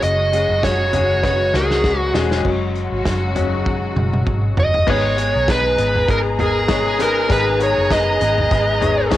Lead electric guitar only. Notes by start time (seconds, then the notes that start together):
0.03 D#5
0.64 C#5
1.25 C#5
1.56 G#4
1.99 F#4
4.60 D#5
4.90 C#5
5.50 B4
6.11 A#4
6.40 G#4
7.02 A#4
7.32 B4
7.63 C#5
7.93 D#5